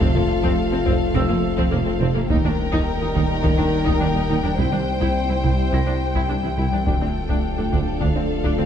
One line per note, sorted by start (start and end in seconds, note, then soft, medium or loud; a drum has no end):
0.00 0.06 F1 medium
0.00 0.07 F1 medium
0.00 2.32 F1 medium
0.00 0.07 F2 medium
0.00 2.26 C3 medium
0.00 2.26 F3 medium
0.00 0.10 F3 medium
0.00 2.26 A3 medium
0.00 0.07 C4 medium
0.00 2.26 F4 medium
0.00 2.26 A4 medium
0.00 2.30 C5 medium
0.00 0.55 F5 soft
0.00 2.26 F5 medium
0.00 0.54 F6 medium
0.00 taiko loud
0.15 0.21 F2 medium
0.15 0.21 A#3 soft
0.15 0.24 F4 medium
0.15 taiko mid soft
0.43 0.49 F2 medium
0.43 0.52 F3 medium
0.43 0.49 C4 medium
0.43 taiko medium
0.72 0.79 F2 medium
0.72 0.78 C4 medium
0.72 0.81 C4 medium
0.86 0.92 F1 medium
0.86 0.93 F1 medium
0.86 0.93 F2 medium
0.86 0.95 F3 medium
0.86 0.92 C4 medium
0.86 taiko medium
1.15 1.21 F1 medium
1.15 1.21 F2 medium
1.15 1.24 F3 medium
1.15 1.21 C4 medium
1.15 2.83 E6 medium
1.15 taiko medium
1.29 1.36 F2 medium
1.29 1.35 A#3 medium
1.29 1.38 F4 medium
1.57 1.64 F2 medium
1.57 1.67 F3 medium
1.57 1.63 C4 medium
1.57 taiko medium
1.71 1.78 F1 medium
1.71 1.78 F2 medium
1.71 1.77 A#3 medium
1.71 1.81 C4 medium
1.85 1.93 F2 medium
1.85 1.95 A3 medium
1.85 1.92 C4 medium
2.00 2.07 F1 medium
2.00 2.07 F2 medium
2.00 2.09 F3 loud
2.00 2.06 C4 medium
2.15 2.22 F2 medium
2.15 2.24 A3 medium
2.15 2.21 A#3 medium
2.29 4.61 D#1 medium
2.29 2.35 D#2 medium
2.29 2.36 D#2 medium
2.29 4.54 D#3 loud
2.29 2.39 D#3 loud
2.29 6.54 G3 medium
2.29 4.41 A#3 medium
2.29 4.59 A#3 medium
2.29 2.35 D#4 medium
2.29 4.59 D#4 medium
2.29 4.41 D#4 medium
2.29 6.87 G4 medium
2.29 4.55 A#4 medium
2.29 4.59 G5 medium
2.29 8.02 G5 medium
2.29 taiko loud
2.44 2.50 D#2 medium
2.44 2.50 D4 medium
2.44 2.53 D#4 medium
2.44 taiko mid soft
2.72 2.79 D#2 medium
2.72 2.81 D#3 loud
2.72 2.78 D#4 medium
2.72 taiko medium
3.01 3.07 D#2 medium
3.01 3.10 A#3 medium
3.01 3.07 D#4 medium
3.15 3.21 D#2 medium
3.15 3.24 D#3 medium
3.15 3.21 D#4 medium
3.15 taiko medium
3.43 3.50 D#2 medium
3.43 3.53 D#3 medium
3.43 3.49 D#4 medium
3.43 taiko medium
3.57 3.64 D#2 medium
3.57 3.63 D4 medium
3.57 3.67 D#4 medium
3.86 3.93 D#2 medium
3.86 3.96 D#3 medium
3.86 3.92 D#4 medium
3.86 taiko medium
4.00 4.07 D#2 medium
4.00 4.10 A#3 medium
4.00 4.06 D4 medium
4.15 4.21 D#2 medium
4.15 4.24 G3 medium
4.15 4.21 D#4 soft
4.29 4.36 D#2 medium
4.29 4.38 D#3 medium
4.29 4.35 D#4 medium
4.44 4.50 D#2 medium
4.44 4.53 G3 medium
4.44 4.50 D4 medium
4.57 4.64 C2 medium
4.57 6.88 C2 medium
4.57 4.67 C3 medium
4.57 6.55 C3 medium
4.57 6.87 G3 medium
4.57 6.87 C4 medium
4.57 6.54 C4 medium
4.57 6.54 E4 medium
4.57 4.64 E4 medium
4.57 6.67 C5 medium
4.57 6.87 E5 medium
4.57 taiko loud
4.72 4.79 C2 medium
4.72 4.81 C4 medium
4.72 4.78 D4 medium
4.72 taiko mid soft
5.01 5.07 C2 medium
5.01 5.10 C3 medium
5.01 5.07 E4 medium
5.01 taiko medium
5.29 5.36 C2 medium
5.29 5.39 G3 medium
5.29 5.35 E4 soft
5.43 5.50 C2 medium
5.43 5.53 C3 medium
5.43 5.49 E4 medium
5.43 taiko medium
5.72 5.78 C2 medium
5.72 5.79 C2 medium
5.72 5.82 C3 medium
5.72 5.78 E4 medium
5.72 7.41 C6 soft
5.72 7.41 A#6 medium
5.72 taiko medium
5.86 5.93 C2 soft
5.86 5.96 C4 medium
5.86 5.92 D4 soft
6.15 6.21 C2 medium
6.15 6.25 C3 medium
6.15 6.21 E4 medium
6.15 taiko medium
6.29 6.35 C2 soft
6.29 6.36 C2 medium
6.29 6.36 C2 soft
6.29 6.39 G3 medium
6.29 6.35 D4 soft
6.43 6.50 C2 soft
6.43 6.53 E3 medium
6.43 6.49 E4 soft
6.58 6.64 C2 medium
6.58 6.68 C3 medium
6.58 6.64 E4 medium
6.73 6.79 C2 soft
6.73 6.82 E3 medium
6.73 6.78 D4 soft
6.86 8.66 D1 medium
6.86 6.92 D2 medium
6.86 6.93 D2 medium
6.86 8.66 D3 medium
6.86 6.96 D3 medium
6.86 8.66 F3 medium
6.86 8.66 A3 medium
6.86 6.92 D4 medium
6.86 8.66 D4 medium
6.86 8.66 F4 medium
6.86 8.66 A4 medium
6.86 8.66 F5 medium
6.86 taiko medium
7.01 7.07 D2 soft
7.01 7.06 C4 soft
7.01 7.10 D4 medium
7.29 7.36 D2 medium
7.29 7.39 D3 medium
7.29 7.35 D4 medium
7.29 taiko medium
7.58 7.64 D2 soft
7.58 7.67 A3 medium
7.58 7.64 D4 soft
7.72 7.78 D2 medium
7.72 7.79 D2 medium
7.72 7.82 D3 medium
7.72 7.78 D4 medium
7.72 taiko medium
8.00 8.07 D2 medium
8.00 8.10 D3 medium
8.00 8.06 D4 medium
8.00 8.66 F5 soft
8.00 taiko medium
8.15 8.22 D2 medium
8.15 8.21 C4 soft
8.15 8.24 D4 medium
8.44 8.50 D2 medium
8.44 8.53 D3 medium
8.44 8.50 D4 medium
8.44 taiko medium
8.58 8.64 D2 soft
8.58 8.65 D2 medium
8.58 8.66 A3 medium
8.58 8.64 C4 medium